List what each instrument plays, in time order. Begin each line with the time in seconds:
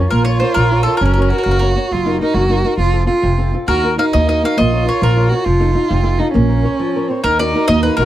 0.10 upright bass A#1, nylon-string guitar A#3, violin F4, mandolin A#4
0.25 nylon-string guitar F4 A#4 C#5, mandolin C#5
0.40 nylon-string guitar F4 A#4 C#5, mandolin C5
0.54 upright bass A#1, nylon-string guitar F3, mandolin A#4
0.71 nylon-string guitar F4 A#4 C#5
0.83 nylon-string guitar F4 A#4 C#5, mandolin A4
0.97 mandolin A#4
1.01 upright bass F#1, nylon-string guitar F#3, violin C#4
1.05 mandolin A#4
1.13 mandolin A#4
1.18 nylon-string guitar F#4 A#4 C#5
1.22 mandolin A#4
1.29 violin F#4, nylon-string guitar F#4 A#4 C#5, mandolin A#4
1.38 mandolin A#4
1.43 upright bass F#1, nylon-string guitar C#3, mandolin A#4
1.51 mandolin A#4
1.59 nylon-string guitar F#4 A#4 C#5, mandolin A#4
1.76 nylon-string guitar F#4 A#4 C#5
1.91 upright bass F#1, nylon-string guitar F#3, violin F4
2.05 nylon-string guitar D#4 F#4 A#4
2.21 violin D#4, nylon-string guitar D#4 F#4 A#4
2.34 upright bass F#1, nylon-string guitar F#3, violin F#4
2.48 nylon-string guitar D#4 F#4 A#4
2.64 nylon-string guitar D#4 F#4 A#4
2.78 upright bass F1, nylon-string guitar F3, violin F4
2.93 nylon-string guitar C4 F4 A4
3.06 nylon-string guitar C4 F4 A4, violin F4
3.22 upright bass F1, nylon-string guitar C3
3.38 nylon-string guitar C4 F4 A4
3.54 nylon-string guitar C4 F4 A4
3.68 upright bass D#2, nylon-string guitar D#3, violin F#4, mandolin A#4
3.83 nylon-string guitar D#4 F#4 A#4
3.97 violin D#4, nylon-string guitar D#4 F#4 A#4, mandolin F5
4.13 upright bass D#2, nylon-string guitar A#3, mandolin D#5
4.28 nylon-string guitar D#4 F#4 A#4, mandolin D#5
4.43 nylon-string guitar D#4 F#4 A#4, mandolin F5
4.57 upright bass A#1, nylon-string guitar A#3, violin F4, mandolin D#5
4.72 nylon-string guitar F4 A#4 C#5
4.85 nylon-string guitar F4 A#4 C#5, mandolin C#5
5.01 upright bass A#1, nylon-string guitar F3, mandolin A#4
5.16 nylon-string guitar F4 A#4 C#5
5.29 nylon-string guitar F4 A#4 C#5, violin F#4
5.44 upright bass F1, nylon-string guitar F3, violin F4
5.60 nylon-string guitar D#4 F4 A4
5.75 nylon-string guitar D#4 F4 A4
5.90 upright bass F1, nylon-string guitar C3
6.03 nylon-string guitar D#4 F4 A4
6.19 violin D#4, nylon-string guitar D#4 F4 A4
6.32 upright bass A#1, nylon-string guitar A#3, violin C#4
6.49 nylon-string guitar A#4 C5 C#5
6.64 nylon-string guitar A#4 C5 C#5
6.79 nylon-string guitar F3
6.96 nylon-string guitar A#4 C5 C#5
7.08 violin C4, nylon-string guitar A#4 C5 C#5
7.24 upright bass D#2, nylon-string guitar D#3, violin D#4, mandolin A#4
7.39 nylon-string guitar D#4 F#4 A#4, mandolin D5
7.54 nylon-string guitar D#4 F#4 A#4
7.68 upright bass D#2, nylon-string guitar A#3, mandolin D#5
7.83 nylon-string guitar D#4 F#4 A#4, mandolin B4
7.97 upright bass A#1, nylon-string guitar D#4 F#4 A#4, mandolin A#4
8.01 violin F#4